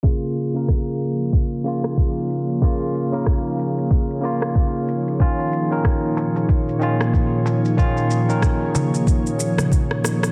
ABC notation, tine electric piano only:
X:1
M:4/4
L:1/16
Q:"Swing 16ths" 1/4=93
K:Bbm
V:1 name="Tine electric piano"
[D,B,F]3 [D,B,B] z6 [D,B,F]6 | [D,B,F]3 [D,B,B] z6 [D,B,F]6 | [E,DF]3 [E,DB] z6 [E,DF]6 | [E,DF]3 [E,DB] z12 |]